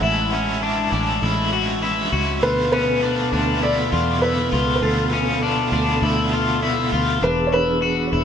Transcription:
Already playing: tonewheel organ G#3
0.01 fingered electric bass A1, overdriven electric guitar A2 E3 G#3 C#4 E4, clean electric guitar E4, felt piano E5
0.31 clean electric guitar C#4, overdriven electric guitar C#4 E4
0.36 overdriven electric guitar G#3
0.60 overdriven electric guitar E3 G#3 C#4, clean electric guitar D4
0.66 overdriven electric guitar E4
0.90 fingered electric bass A1, overdriven electric guitar C#4 E4, clean electric guitar D4
0.95 overdriven electric guitar G#3
1.21 fingered electric bass A1, overdriven electric guitar A2 E3 G#3 C#4, clean electric guitar E4
1.25 overdriven electric guitar E4
1.50 overdriven electric guitar C#4 E4, clean electric guitar F#4
1.56 overdriven electric guitar G#3
1.80 overdriven electric guitar E3 G#3, clean electric guitar E4
1.84 overdriven electric guitar C#4 E4
2.10 fingered electric bass C#2, overdriven electric guitar C#4 E4, clean electric guitar F#4
2.16 overdriven electric guitar G#3
2.40 fingered electric bass D2, tonewheel organ B2 B3 A4, overdriven electric guitar D3 A3 B3 F4, clean electric guitar F4, felt piano B4
2.70 overdriven electric guitar B3 F4, clean electric guitar C#4, felt piano B4
2.76 overdriven electric guitar A3
3.00 overdriven electric guitar D3 A3 B3, clean electric guitar D4
3.06 overdriven electric guitar F4
3.31 fingered electric bass D2, overdriven electric guitar B3 F4, clean electric guitar D4
3.36 overdriven electric guitar A3
3.61 overdriven electric guitar D3 A3 B3 F4, clean electric guitar E4, felt piano D5
3.90 fingered electric bass E2, overdriven electric guitar B3 F4, clean electric guitar F4
3.96 overdriven electric guitar A3
4.20 overdriven electric guitar D3 A3 B3, clean electric guitar E4, felt piano B4
4.26 overdriven electric guitar F4
4.51 fingered electric bass C#2, overdriven electric guitar B3 F4, clean electric guitar F4
4.56 overdriven electric guitar A3
4.76 felt piano B4
4.82 fingered electric bass D2, overdriven electric guitar D3 A3 B3, clean electric guitar F4, felt piano A4
4.86 overdriven electric guitar F4
5.11 overdriven electric guitar B3 F4, clean electric guitar C#4
5.17 overdriven electric guitar A3
5.41 overdriven electric guitar D3 A3 B3, clean electric guitar D4
5.47 overdriven electric guitar F4
5.71 fingered electric bass D2, overdriven electric guitar B3 F4, clean electric guitar D4
5.77 overdriven electric guitar A3
6.02 fingered electric bass D2, overdriven electric guitar D3 A3 B3 F4, clean electric guitar E4
6.31 overdriven electric guitar B3 F4, clean electric guitar F4
6.37 overdriven electric guitar A3
6.61 overdriven electric guitar D3 A3 B3, clean electric guitar E4
6.67 overdriven electric guitar F4
6.91 fingered electric bass D2, overdriven electric guitar B3 F4, clean electric guitar F4
6.97 overdriven electric guitar A3
7.22 fingered electric bass E1, tonewheel organ E3 B3 D4 G#4, clean electric guitar D4, felt piano B4
7.47 felt piano C#5
7.52 clean electric guitar E4, felt piano B4
7.82 clean electric guitar F#4
8.13 fingered electric bass E1, clean electric guitar E4

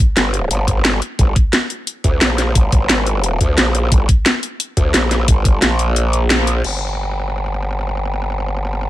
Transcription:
0.17 wobble bass G1, snare, closed hi-hat
0.34 closed hi-hat
0.51 wobble bass G1, closed hi-hat
0.68 kick, closed hi-hat
0.85 snare, closed hi-hat
1.02 closed hi-hat
1.19 wobble bass G1, kick, closed hi-hat
1.36 kick, closed hi-hat
1.53 snare, closed hi-hat
1.70 closed hi-hat
1.87 closed hi-hat
2.04 wobble bass D2, kick, closed hi-hat
2.21 wobble bass A#1, snare, closed hi-hat
2.38 snare, closed hi-hat
2.55 wobble bass G#1, kick, closed hi-hat
2.72 kick, closed hi-hat
2.89 snare, closed hi-hat
3.06 closed hi-hat
3.24 closed hi-hat
3.41 wobble bass D2, kick, closed hi-hat
3.58 wobble bass A#1, snare, closed hi-hat
3.75 closed hi-hat
3.92 wobble bass G1, kick, closed hi-hat
4.09 kick, closed hi-hat
4.26 snare, closed hi-hat
4.43 closed hi-hat
4.60 closed hi-hat
4.77 wobble bass D2, kick, closed hi-hat
4.94 wobble bass A#1, snare, closed hi-hat
5.11 snare, closed hi-hat
5.28 wobble bass G1, kick, closed hi-hat
5.45 kick, closed hi-hat
5.62 wobble bass A#1, snare, closed hi-hat
5.79 closed hi-hat
5.96 closed hi-hat
6.13 closed hi-hat
6.30 snare, closed hi-hat
6.47 closed hi-hat
6.64 wobble bass G1, crash

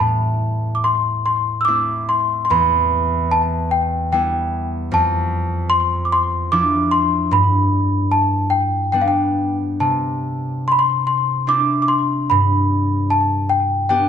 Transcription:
Already playing: harp B3 E4, celesta A5
0.00 harp A2
0.75 celesta D6
0.84 celesta C6
1.26 celesta C6
1.61 celesta E6
1.65 harp A3 C4 E4, celesta D6
2.09 celesta C6
2.45 celesta C6
2.50 harp E2, celesta B5
3.31 celesta A5
3.71 celesta G5
4.12 harp G3 B3 E4, celesta G5
4.91 harp F2, celesta A5
5.70 celesta C6
6.05 celesta D6
6.12 celesta C6
6.52 harp F3 D4 E4, celesta D6
6.91 celesta C6
7.31 harp G2, celesta B5
8.12 celesta A5
8.50 celesta G5
8.92 harp G3 B3 D4, celesta G5
9.02 celesta F5
9.08 celesta G5
9.80 harp C3, celesta A5
10.68 celesta C6
10.72 celesta B5
10.79 celesta C6
11.07 celesta C6
11.47 harp C4 D4 E4, celesta D6
11.82 celesta D6
11.88 celesta C6
12.30 harp G2, celesta B5
13.10 celesta A5
13.49 celesta G5
13.89 harp B3 D4 G4, celesta G5

